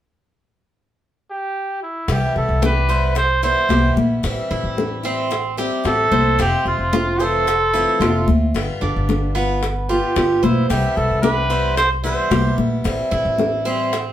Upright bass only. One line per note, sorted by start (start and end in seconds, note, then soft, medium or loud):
2.08 2.21 C2 medium
2.36 2.48 C2 medium
2.49 3.53 C2 medium
3.69 3.95 C2 medium
3.96 4.22 A#1 medium
4.24 4.37 A1 medium
4.51 4.63 A1 medium
4.63 5.68 A1 medium
5.85 6.11 A1 medium
6.11 6.38 C2 medium
6.39 6.52 F1 medium
6.65 6.78 F1 medium
6.79 7.83 F1 medium
8.00 8.26 F1 medium
8.27 8.53 D2 medium
8.54 8.67 G1 medium
8.82 8.94 G1 medium
8.96 9.99 G1 medium
10.16 10.42 G1 medium
10.43 10.69 B1 medium
10.70 10.83 C2 medium
10.97 11.10 C2 medium
11.11 12.14 C2 medium
12.31 12.57 C2 medium
12.58 12.84 A#1 medium
12.85 12.98 A1 medium
13.12 13.25 A1 medium
13.25 14.13 A1 medium